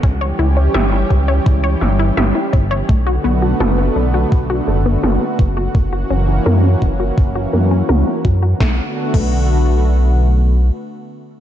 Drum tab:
CC |----------------|----------------|----------------|---x------------|
SD |----o-----o-o---|----o-------o---|----o-----o-o---|o---------------|
BD |o-----o-o-----o-|o-------o-----o-|o-----o-o-----o-|o--o------------|